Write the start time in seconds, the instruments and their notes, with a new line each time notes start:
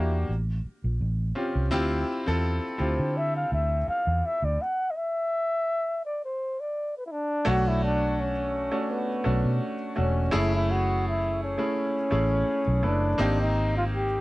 Already playing: fingered electric bass E2, grand piano A#3 D4 F#4 G4, flugelhorn E4
0.29 fingered electric bass A1
0.65 muted fingered electric bass stroke
0.84 fingered electric bass A#1
1.01 fingered electric bass A1
1.35 grand piano C4 C#4 F4 G4
1.55 fingered electric bass C2
1.71 fingered electric bass D2, grand piano C4 E4 F4 G4
2.26 fingered electric bass E2, grand piano C4 E4 F4 A4
2.78 fingered electric bass D2, grand piano C4 E4 F4 G4, flugelhorn C5
2.99 fingered electric bass D3
3.17 flugelhorn E5
3.36 flugelhorn F5
3.52 fingered electric bass D2, flugelhorn E5
3.88 flugelhorn F5, muted fingered electric bass stroke
4.07 fingered electric bass E2
4.25 flugelhorn E5
4.42 fingered electric bass D2, flugelhorn D5
4.62 flugelhorn F#5
4.90 flugelhorn D#5
4.96 flugelhorn E5
6.05 flugelhorn D5
6.25 flugelhorn C5
6.60 flugelhorn D5
6.97 flugelhorn B4
7.06 flugelhorn E4
7.12 flugelhorn D4
7.45 fingered electric bass B1, grand piano A3 D4 F#4 C#5, flugelhorn F#4
7.68 flugelhorn E4
7.84 flugelhorn D4
8.20 flugelhorn C#4
8.71 grand piano A3 C#4 D4 F#4
8.91 flugelhorn B3
9.24 fingered electric bass B1, grand piano A3 C#4 D4 F#4
9.45 fingered electric bass B2
9.96 fingered electric bass E1, grand piano A3 C#4 D4 F#4, flugelhorn C#4
10.31 fingered electric bass F#1, grand piano A3 C#4 E4 G#4
10.36 flugelhorn E4
10.55 flugelhorn E4
10.71 flugelhorn F#4
11.08 flugelhorn E4
11.43 flugelhorn C#4
11.58 grand piano A3 C#4 E4 G#4
12.11 fingered electric bass A1, grand piano A3 C#4 E4 G#4
12.67 fingered electric bass B1
12.83 fingered electric bass F#1, grand piano A3 C#4 E4 B4
12.87 flugelhorn D4
13.18 fingered electric bass G#1, grand piano A#3 C4 D#4 G4
13.41 flugelhorn D#4
13.77 flugelhorn F4
13.94 flugelhorn G4